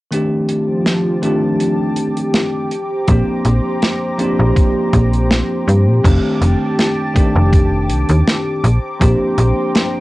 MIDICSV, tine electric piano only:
0, 0, Header, 1, 2, 480
1, 0, Start_track
1, 0, Tempo, 740741
1, 80, Time_signature, 4, 2, 24, 8
1, 6481, End_track
2, 0, Start_track
2, 0, Title_t, "Tine electric piano"
2, 0, Program_c, 0, 4
2, 69, Note_on_c, 0, 51, 67
2, 74, Note_on_c, 0, 57, 66
2, 80, Note_on_c, 0, 60, 63
2, 84, Note_on_c, 0, 62, 67
2, 90, Note_on_c, 0, 67, 80
2, 201, Control_c, 0, 64, 127
2, 767, Note_off_c, 0, 51, 0
2, 770, Note_off_c, 0, 57, 0
2, 773, Note_off_c, 0, 60, 0
2, 775, Note_off_c, 0, 62, 0
2, 777, Note_off_c, 0, 67, 0
2, 790, Note_on_c, 0, 51, 79
2, 793, Note_on_c, 0, 57, 71
2, 798, Note_on_c, 0, 60, 74
2, 803, Note_on_c, 0, 62, 72
2, 807, Note_on_c, 0, 67, 89
2, 1741, Note_off_c, 0, 51, 0
2, 1743, Note_off_c, 0, 57, 0
2, 1745, Note_off_c, 0, 60, 0
2, 1748, Note_off_c, 0, 62, 0
2, 1750, Note_off_c, 0, 67, 0
2, 1767, Control_c, 0, 64, 0
2, 1872, Control_c, 0, 64, 127
2, 1990, Note_on_c, 0, 53, 71
2, 1997, Note_on_c, 0, 58, 66
2, 1999, Note_on_c, 0, 60, 65
2, 2004, Note_on_c, 0, 62, 65
2, 2010, Note_on_c, 0, 67, 76
2, 2688, Note_off_c, 0, 53, 0
2, 2691, Note_off_c, 0, 58, 0
2, 2692, Note_off_c, 0, 60, 0
2, 2695, Note_off_c, 0, 62, 0
2, 2698, Note_off_c, 0, 67, 0
2, 2708, Note_on_c, 0, 53, 83
2, 2711, Note_on_c, 0, 58, 76
2, 2717, Note_on_c, 0, 60, 72
2, 2721, Note_on_c, 0, 62, 77
2, 2727, Note_on_c, 0, 67, 91
2, 3887, Note_off_c, 0, 53, 0
2, 3888, Note_off_c, 0, 58, 0
2, 3891, Note_off_c, 0, 60, 0
2, 3893, Note_off_c, 0, 62, 0
2, 3896, Note_off_c, 0, 67, 0
2, 3909, Note_on_c, 0, 51, 71
2, 3912, Note_on_c, 0, 57, 69
2, 3918, Note_on_c, 0, 60, 65
2, 3923, Note_on_c, 0, 62, 64
2, 3927, Control_c, 0, 64, 0
2, 3928, Note_on_c, 0, 67, 81
2, 4033, Control_c, 0, 64, 127
2, 4607, Note_off_c, 0, 51, 0
2, 4609, Note_off_c, 0, 57, 0
2, 4611, Note_off_c, 0, 60, 0
2, 4614, Note_off_c, 0, 62, 0
2, 4617, Note_off_c, 0, 67, 0
2, 4627, Note_on_c, 0, 51, 78
2, 4633, Note_on_c, 0, 57, 74
2, 4639, Note_on_c, 0, 60, 76
2, 4644, Note_on_c, 0, 62, 76
2, 4647, Note_on_c, 0, 67, 91
2, 5580, Note_off_c, 0, 51, 0
2, 5583, Note_off_c, 0, 57, 0
2, 5586, Note_off_c, 0, 60, 0
2, 5588, Note_off_c, 0, 62, 0
2, 5590, Note_off_c, 0, 67, 0
2, 5607, Control_c, 0, 64, 0
2, 5728, Control_c, 0, 64, 127
2, 5828, Note_on_c, 0, 53, 74
2, 5833, Note_on_c, 0, 58, 66
2, 5837, Note_on_c, 0, 60, 64
2, 5842, Note_on_c, 0, 62, 70
2, 5848, Note_on_c, 0, 67, 80
2, 6481, Note_off_c, 0, 53, 0
2, 6481, Note_off_c, 0, 58, 0
2, 6481, Note_off_c, 0, 60, 0
2, 6481, Note_off_c, 0, 62, 0
2, 6481, Note_off_c, 0, 67, 0
2, 6481, End_track
0, 0, End_of_file